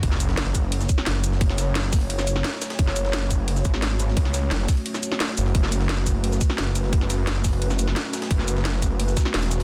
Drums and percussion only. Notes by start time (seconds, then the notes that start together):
0.03 kick, closed hi-hat, ride
0.12 snare
0.20 closed hi-hat, ride, shaker
0.29 snare
0.37 snare, closed hi-hat, ride
0.46 snare
0.55 kick, closed hi-hat, ride, shaker
0.72 closed hi-hat, ride
0.81 snare, shaker
0.89 kick, closed hi-hat, ride, shaker
0.98 snare
1.06 snare, closed hi-hat, ride
1.24 closed hi-hat, ride, shaker
1.32 snare
1.41 kick, closed hi-hat, ride
1.50 snare
1.58 snare, closed hi-hat, ride, shaker
1.75 snare, closed hi-hat, ride
1.84 snare
1.93 kick, snare, closed hi-hat, open hi-hat, shaker
2.01 ride
2.10 closed hi-hat, ride
2.19 snare, shaker
2.27 closed hi-hat, ride, shaker
2.36 snare
2.44 snare, closed hi-hat, ride
2.53 snare
2.62 snare, closed hi-hat, ride, shaker
2.70 snare, ride
2.79 kick, closed hi-hat, ride
2.87 snare
2.96 closed hi-hat, ride, shaker
3.05 snare
3.13 snare, closed hi-hat, ride
3.22 snare
3.31 kick, closed hi-hat, ride, shaker
3.48 closed hi-hat, ride
3.56 snare, shaker
3.65 kick, closed hi-hat, ride, shaker
3.74 snare
3.82 snare, closed hi-hat, ride
4.00 closed hi-hat, ride, shaker
4.08 snare
4.17 kick, closed hi-hat, ride
4.25 snare
4.34 snare, closed hi-hat, ride, shaker
4.51 snare, closed hi-hat, ride
4.60 snare
4.68 kick, snare, closed hi-hat, open hi-hat, shaker
4.77 ride
4.86 closed hi-hat, ride
4.94 snare, shaker
5.03 closed hi-hat, ride, shaker
5.12 snare
5.20 snare, closed hi-hat, ride
5.29 snare
5.37 closed hi-hat, ride, shaker
5.46 snare
5.55 kick, closed hi-hat, ride
5.63 snare
5.72 closed hi-hat, ride, shaker
5.81 snare
5.89 snare, closed hi-hat, ride
5.98 snare
6.07 kick, closed hi-hat, ride, shaker
6.24 closed hi-hat, ride
6.32 snare, shaker
6.41 kick, closed hi-hat, ride, shaker
6.50 snare
6.58 snare, closed hi-hat, ride
6.75 closed hi-hat, ride, shaker
6.84 snare
6.93 kick, closed hi-hat, ride
7.01 snare
7.10 snare, closed hi-hat, ride, shaker
7.27 snare, closed hi-hat, ride
7.36 snare
7.44 kick, snare, closed hi-hat, open hi-hat, shaker
7.53 ride
7.62 closed hi-hat, ride
7.70 snare, shaker
7.79 closed hi-hat, ride, shaker
7.88 snare
7.96 snare, closed hi-hat, ride
8.05 snare
8.13 snare, closed hi-hat, ride, shaker
8.22 snare, ride
8.31 kick, closed hi-hat, ride
8.39 snare
8.48 closed hi-hat, ride, shaker
8.57 snare
8.65 snare, closed hi-hat, ride
8.74 snare
8.82 kick, closed hi-hat, ride, shaker
9.00 closed hi-hat, ride
9.08 snare, shaker
9.17 kick, snare, closed hi-hat, ride, shaker
9.25 snare
9.34 snare, closed hi-hat, open hi-hat
9.43 snare, ride
9.51 snare, closed hi-hat, shaker
9.60 snare, open hi-hat